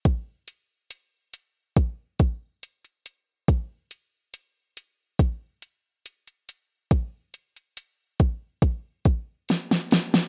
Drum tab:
HH |x-x-x-x-x-x-xxx-|x-x-x-x-x-x-xxx-|x-xxx-x-x-x-x-x-|
SD |----------------|----------------|------------oooo|
BD |o-------o-o-----|o-------o-------|o-----o-o-o-----|